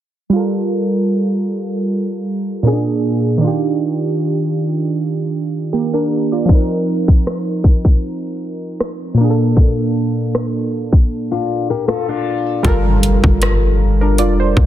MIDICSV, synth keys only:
0, 0, Header, 1, 2, 480
1, 0, Start_track
1, 0, Key_signature, -2, "minor"
1, 0, Tempo, 769231
1, 210, Time_signature, 4, 2, 24, 8
1, 9149, End_track
2, 0, Start_track
2, 0, Title_t, "Synth keys"
2, 0, Program_c, 0, 88
2, 185, Note_on_c, 0, 55, 69
2, 204, Note_on_c, 0, 65, 64
2, 225, Note_on_c, 0, 69, 58
2, 244, Note_on_c, 0, 70, 75
2, 327, Control_c, 0, 64, 127
2, 1613, Note_off_c, 0, 55, 0
2, 1622, Note_off_c, 0, 65, 0
2, 1633, Note_off_c, 0, 69, 0
2, 1641, Note_on_c, 0, 46, 71
2, 1642, Note_off_c, 0, 70, 0
2, 1650, Note_on_c, 0, 58, 64
2, 1658, Control_c, 0, 64, 0
2, 1660, Note_on_c, 0, 61, 52
2, 1669, Note_on_c, 0, 68, 81
2, 1699, Note_off_c, 0, 61, 0
2, 1700, Note_on_c, 0, 62, 66
2, 1758, Control_c, 0, 64, 127
2, 2107, Note_on_c, 0, 51, 70
2, 2119, Note_off_c, 0, 62, 0
2, 2125, Note_off_c, 0, 46, 0
2, 2127, Note_on_c, 0, 62, 63
2, 2130, Note_off_c, 0, 58, 0
2, 2139, Control_c, 0, 64, 0
2, 2140, Note_off_c, 0, 68, 0
2, 2147, Note_on_c, 0, 65, 62
2, 2167, Note_on_c, 0, 67, 77
2, 2252, Control_c, 0, 64, 127
2, 3544, Note_off_c, 0, 62, 0
2, 3554, Note_off_c, 0, 65, 0
2, 3564, Note_off_c, 0, 67, 0
2, 3575, Note_on_c, 0, 67, 60
2, 3579, Note_on_c, 0, 58, 54
2, 3696, Note_off_c, 0, 67, 0
2, 3698, Note_off_c, 0, 58, 0
2, 3704, Note_on_c, 0, 70, 65
2, 3707, Note_on_c, 0, 62, 58
2, 3930, Note_off_c, 0, 70, 0
2, 3932, Note_off_c, 0, 62, 0
2, 3944, Note_on_c, 0, 74, 59
2, 3948, Note_on_c, 0, 65, 50
2, 4014, Note_off_c, 0, 51, 0
2, 4026, Note_on_c, 0, 53, 72
2, 4045, Note_on_c, 0, 60, 62
2, 4059, Control_c, 0, 64, 0
2, 4066, Note_on_c, 0, 63, 62
2, 4086, Note_on_c, 0, 70, 73
2, 4170, Note_off_c, 0, 74, 0
2, 4172, Note_off_c, 0, 65, 0
2, 4183, Control_c, 0, 64, 127
2, 5693, Note_off_c, 0, 53, 0
2, 5703, Note_off_c, 0, 60, 0
2, 5705, Note_on_c, 0, 46, 70
2, 5713, Note_off_c, 0, 63, 0
2, 5723, Note_off_c, 0, 70, 0
2, 5725, Note_on_c, 0, 58, 66
2, 5738, Control_c, 0, 64, 0
2, 5745, Note_on_c, 0, 62, 65
2, 5765, Note_on_c, 0, 68, 61
2, 5791, Note_off_c, 0, 68, 0
2, 5805, Note_on_c, 0, 69, 75
2, 5851, Control_c, 0, 64, 127
2, 7613, Note_off_c, 0, 46, 0
2, 7623, Note_off_c, 0, 58, 0
2, 7633, Note_off_c, 0, 62, 0
2, 7663, Note_off_c, 0, 69, 0
2, 7881, Note_on_c, 0, 55, 81
2, 7890, Note_on_c, 0, 65, 76
2, 7900, Control_c, 0, 64, 0
2, 7901, Note_on_c, 0, 69, 76
2, 7911, Note_on_c, 0, 70, 90
2, 8016, Control_c, 0, 64, 127
2, 8552, Note_off_c, 0, 55, 0
2, 8557, Note_off_c, 0, 65, 0
2, 8562, Note_off_c, 0, 69, 0
2, 8567, Note_off_c, 0, 70, 0
2, 8744, Note_on_c, 0, 70, 65
2, 8748, Note_on_c, 0, 62, 52
2, 8847, Note_off_c, 0, 70, 0
2, 8849, Note_off_c, 0, 62, 0
2, 8854, Note_on_c, 0, 74, 65
2, 8858, Note_on_c, 0, 65, 57
2, 8975, Note_off_c, 0, 74, 0
2, 8977, Note_off_c, 0, 65, 0
2, 8984, Note_on_c, 0, 72, 66
2, 9149, Note_off_c, 0, 72, 0
2, 9149, End_track
0, 0, End_of_file